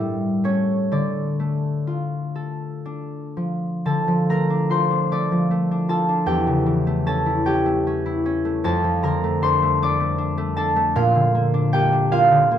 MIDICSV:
0, 0, Header, 1, 2, 480
1, 0, Start_track
1, 0, Key_signature, -1, "minor"
1, 0, Tempo, 946372
1, 470, Time_signature, 6, 3, 24, 8
1, 960, Tempo, 991736
1, 1920, Tempo, 839161
1, 2400, Tempo, 788436
1, 4800, Tempo, 768246
1, 7254, End_track
2, 0, Start_track
2, 0, Title_t, "Harp"
2, 0, Program_c, 0, 46
2, 0, Note_on_c, 0, 45, 57
2, 0, Note_on_c, 0, 55, 46
2, 0, Note_on_c, 0, 67, 53
2, 0, Note_on_c, 0, 76, 78
2, 0, Note_on_c, 0, 79, 76
2, 222, Note_on_c, 0, 57, 41
2, 226, Note_on_c, 0, 73, 61
2, 228, Note_on_c, 0, 61, 43
2, 421, Note_off_c, 0, 67, 0
2, 465, Note_on_c, 0, 50, 48
2, 467, Note_on_c, 0, 74, 61
2, 487, Note_off_c, 0, 55, 0
2, 487, Note_off_c, 0, 73, 0
2, 488, Note_off_c, 0, 61, 0
2, 488, Note_off_c, 0, 79, 0
2, 490, Note_off_c, 0, 45, 0
2, 491, Note_off_c, 0, 76, 0
2, 702, Note_off_c, 0, 57, 0
2, 708, Note_on_c, 0, 57, 37
2, 950, Note_on_c, 0, 65, 40
2, 1183, Note_on_c, 0, 69, 39
2, 1426, Note_on_c, 0, 62, 41
2, 1674, Note_on_c, 0, 53, 35
2, 1905, Note_off_c, 0, 50, 0
2, 1909, Note_on_c, 0, 50, 52
2, 1911, Note_off_c, 0, 69, 0
2, 1911, Note_on_c, 0, 81, 67
2, 1916, Note_on_c, 0, 69, 57
2, 2027, Note_off_c, 0, 53, 0
2, 2034, Note_on_c, 0, 53, 46
2, 2154, Note_off_c, 0, 57, 0
2, 2160, Note_on_c, 0, 57, 46
2, 2162, Note_on_c, 0, 82, 73
2, 2167, Note_on_c, 0, 70, 57
2, 2270, Note_off_c, 0, 62, 0
2, 2277, Note_on_c, 0, 62, 45
2, 2384, Note_off_c, 0, 65, 0
2, 2391, Note_on_c, 0, 65, 51
2, 2394, Note_on_c, 0, 84, 77
2, 2400, Note_on_c, 0, 72, 55
2, 2464, Note_off_c, 0, 74, 0
2, 2507, Note_off_c, 0, 62, 0
2, 2514, Note_on_c, 0, 62, 46
2, 2572, Note_off_c, 0, 82, 0
2, 2637, Note_off_c, 0, 57, 0
2, 2643, Note_on_c, 0, 57, 49
2, 2646, Note_on_c, 0, 86, 75
2, 2649, Note_on_c, 0, 74, 59
2, 2759, Note_off_c, 0, 53, 0
2, 2766, Note_on_c, 0, 53, 45
2, 2817, Note_off_c, 0, 84, 0
2, 2875, Note_off_c, 0, 57, 0
2, 2882, Note_on_c, 0, 57, 49
2, 3001, Note_off_c, 0, 62, 0
2, 3008, Note_on_c, 0, 62, 49
2, 3107, Note_off_c, 0, 65, 0
2, 3108, Note_off_c, 0, 81, 0
2, 3113, Note_on_c, 0, 65, 48
2, 3115, Note_off_c, 0, 69, 0
2, 3117, Note_on_c, 0, 81, 76
2, 3122, Note_on_c, 0, 69, 59
2, 3227, Note_off_c, 0, 62, 0
2, 3234, Note_on_c, 0, 62, 50
2, 3341, Note_on_c, 0, 40, 57
2, 3344, Note_on_c, 0, 79, 76
2, 3351, Note_on_c, 0, 67, 51
2, 3374, Note_off_c, 0, 65, 0
2, 3375, Note_off_c, 0, 50, 0
2, 3376, Note_off_c, 0, 62, 0
2, 3379, Note_off_c, 0, 53, 0
2, 3380, Note_off_c, 0, 86, 0
2, 3381, Note_off_c, 0, 72, 0
2, 3382, Note_off_c, 0, 74, 0
2, 3383, Note_off_c, 0, 70, 0
2, 3468, Note_on_c, 0, 49, 45
2, 3585, Note_on_c, 0, 52, 49
2, 3703, Note_off_c, 0, 57, 0
2, 3710, Note_on_c, 0, 57, 51
2, 3822, Note_off_c, 0, 81, 0
2, 3829, Note_on_c, 0, 61, 52
2, 3830, Note_off_c, 0, 69, 0
2, 3831, Note_on_c, 0, 81, 73
2, 3837, Note_on_c, 0, 69, 56
2, 3949, Note_on_c, 0, 64, 50
2, 4061, Note_off_c, 0, 79, 0
2, 4063, Note_off_c, 0, 61, 0
2, 4068, Note_off_c, 0, 67, 0
2, 4069, Note_on_c, 0, 61, 54
2, 4070, Note_on_c, 0, 79, 75
2, 4075, Note_on_c, 0, 67, 57
2, 4183, Note_off_c, 0, 57, 0
2, 4191, Note_on_c, 0, 57, 47
2, 4312, Note_off_c, 0, 61, 0
2, 4320, Note_on_c, 0, 61, 56
2, 4427, Note_off_c, 0, 64, 0
2, 4434, Note_on_c, 0, 64, 53
2, 4548, Note_off_c, 0, 61, 0
2, 4556, Note_on_c, 0, 61, 54
2, 4666, Note_off_c, 0, 57, 0
2, 4674, Note_on_c, 0, 57, 51
2, 4784, Note_off_c, 0, 81, 0
2, 4790, Note_on_c, 0, 41, 65
2, 4792, Note_off_c, 0, 69, 0
2, 4794, Note_on_c, 0, 81, 76
2, 4800, Note_on_c, 0, 69, 58
2, 4808, Note_off_c, 0, 40, 0
2, 4811, Note_off_c, 0, 52, 0
2, 4811, Note_off_c, 0, 79, 0
2, 4812, Note_off_c, 0, 49, 0
2, 4813, Note_off_c, 0, 64, 0
2, 4814, Note_off_c, 0, 61, 0
2, 4814, Note_off_c, 0, 67, 0
2, 4913, Note_on_c, 0, 53, 47
2, 5031, Note_on_c, 0, 50, 49
2, 5036, Note_on_c, 0, 82, 79
2, 5039, Note_on_c, 0, 70, 61
2, 5154, Note_off_c, 0, 57, 0
2, 5161, Note_on_c, 0, 57, 49
2, 5278, Note_on_c, 0, 62, 52
2, 5280, Note_on_c, 0, 84, 82
2, 5286, Note_on_c, 0, 72, 67
2, 5397, Note_off_c, 0, 57, 0
2, 5404, Note_on_c, 0, 57, 54
2, 5446, Note_off_c, 0, 82, 0
2, 5522, Note_off_c, 0, 62, 0
2, 5528, Note_on_c, 0, 62, 60
2, 5531, Note_on_c, 0, 86, 90
2, 5539, Note_on_c, 0, 74, 69
2, 5633, Note_off_c, 0, 57, 0
2, 5640, Note_on_c, 0, 57, 50
2, 5688, Note_off_c, 0, 84, 0
2, 5745, Note_off_c, 0, 62, 0
2, 5753, Note_on_c, 0, 62, 58
2, 5866, Note_off_c, 0, 57, 0
2, 5874, Note_on_c, 0, 57, 63
2, 5985, Note_off_c, 0, 81, 0
2, 5989, Note_off_c, 0, 62, 0
2, 5992, Note_off_c, 0, 69, 0
2, 5992, Note_on_c, 0, 81, 88
2, 5996, Note_on_c, 0, 62, 59
2, 5999, Note_on_c, 0, 69, 68
2, 6107, Note_off_c, 0, 57, 0
2, 6115, Note_on_c, 0, 57, 60
2, 6236, Note_on_c, 0, 46, 73
2, 6238, Note_on_c, 0, 77, 85
2, 6243, Note_on_c, 0, 65, 60
2, 6250, Note_off_c, 0, 41, 0
2, 6251, Note_off_c, 0, 50, 0
2, 6252, Note_off_c, 0, 81, 0
2, 6254, Note_off_c, 0, 57, 0
2, 6256, Note_off_c, 0, 69, 0
2, 6257, Note_off_c, 0, 72, 0
2, 6357, Note_on_c, 0, 50, 48
2, 6481, Note_on_c, 0, 58, 57
2, 6593, Note_off_c, 0, 62, 0
2, 6600, Note_on_c, 0, 62, 60
2, 6714, Note_off_c, 0, 58, 0
2, 6719, Note_on_c, 0, 79, 92
2, 6722, Note_on_c, 0, 58, 56
2, 6728, Note_on_c, 0, 67, 63
2, 6834, Note_off_c, 0, 62, 0
2, 6842, Note_on_c, 0, 62, 56
2, 6952, Note_off_c, 0, 58, 0
2, 6955, Note_off_c, 0, 77, 0
2, 6960, Note_on_c, 0, 58, 59
2, 6962, Note_off_c, 0, 65, 0
2, 6962, Note_on_c, 0, 77, 95
2, 6970, Note_on_c, 0, 65, 70
2, 7078, Note_off_c, 0, 50, 0
2, 7085, Note_on_c, 0, 50, 49
2, 7128, Note_off_c, 0, 79, 0
2, 7201, Note_off_c, 0, 58, 0
2, 7208, Note_on_c, 0, 58, 61
2, 7254, Note_off_c, 0, 46, 0
2, 7254, Note_off_c, 0, 50, 0
2, 7254, Note_off_c, 0, 53, 0
2, 7254, Note_off_c, 0, 58, 0
2, 7254, Note_off_c, 0, 62, 0
2, 7254, Note_off_c, 0, 65, 0
2, 7254, Note_off_c, 0, 67, 0
2, 7254, Note_off_c, 0, 70, 0
2, 7254, Note_off_c, 0, 74, 0
2, 7254, Note_off_c, 0, 77, 0
2, 7254, Note_off_c, 0, 86, 0
2, 7254, End_track
0, 0, End_of_file